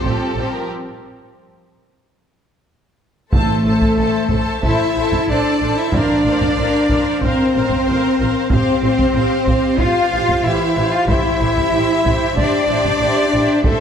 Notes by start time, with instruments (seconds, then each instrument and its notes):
Already playing: french horn section G3 C4
0.03 double bass section A1, cello section A2, viola section F3 C4, violin section C4 G4 A4
0.36 double bass section A1, cello section A2, viola section F3 C4, violin section C4 G4
0.52 violin section A#4
3.33 double bass section A1, timpani A2, cello section A3, french horn section A3, viola section A4 C5, violin section A4 A5, taiko
3.66 double bass section A1, viola section A4 C5, violin section A5
3.82 taiko
3.99 double bass section A1, viola section A4 C5, violin section A5
4.30 double bass section A1, viola section A4 C5, taiko
4.35 violin section A5
4.63 double bass section A1, cello section E4, french horn section E4, viola section A4 C5, violin section E5 A5, taiko
4.96 double bass section A1, viola section A4 C5, violin section A5
5.12 taiko
5.29 double bass section A1, cello section D4, french horn section D4, viola section A4 C5, violin section D5 A5
5.60 double bass section A1, viola section A4 C5, violin section A5
5.77 cello section E4, french horn section E4, violin section E5
5.92 double bass section A1, timpani A2, cello section D4, french horn section D4, viola section A#4 C5, violin section D5 F5, taiko
6.25 double bass section A1, viola section A#4 C5, violin section F5
6.41 taiko
6.58 double bass section A1, viola section A#4 C5, violin section F5
6.90 double bass section A1, viola section A#4 C5, violin section F5, taiko
7.21 double bass section A1, cello section C4, french horn section C4, viola section A#4 C5, violin section C5, taiko
7.27 violin section F5
7.54 double bass section A1, viola section A#4 C5, violin section F5
7.69 taiko
7.86 double bass section A1, viola section A#4 C5, violin section F5
8.19 double bass section A1, viola section A#4 C5, violin section F5
8.50 double bass section A1, cello section C4, french horn section C4, viola section G4 C5, violin section C5 F5, taiko
8.83 double bass section A1, viola section G4 C5, violin section F5
8.99 taiko
9.15 double bass section A1, viola section G4 C5, violin section F5
9.47 double bass section A1, viola section G4 C5, violin section F5, taiko
9.79 double bass section A1, cello section F4, french horn section F4, viola section G4 C5, violin section F5, taiko
10.13 double bass section A1, viola section G4 C5, violin section F5
10.28 taiko
10.44 double bass section A1, french horn section E3, cello section E4, viola section G4 C5, violin section E5 F5
10.76 double bass section A1, viola section G4 C5, violin section F5
10.92 cello section F4, french horn section F4, violin section F5
11.08 double bass section A1, timpani A2, cello section E4, french horn section E4, viola section G4 C5, violin section E5, taiko
11.39 double bass section A1, viola section G4 C5, violin section E5
11.57 taiko
11.72 double bass section A1, viola section G4 C5, violin section E5
12.04 double bass section A1, viola section G4 C5, violin section E5, taiko
12.35 double bass section A1, cello section D4, french horn section D4, viola section G4 C5, violin section D5 E5, taiko
12.68 double bass section A1, viola section G4 C5, violin section E5
12.85 taiko
13.00 double bass section A1, viola section G4 C5, violin section E5
13.33 double bass section A1, viola section G4 C5, violin section E5
13.64 double bass section A1, french horn section A3, cello section A3, violin section A4 E5, viola section A4 C5, taiko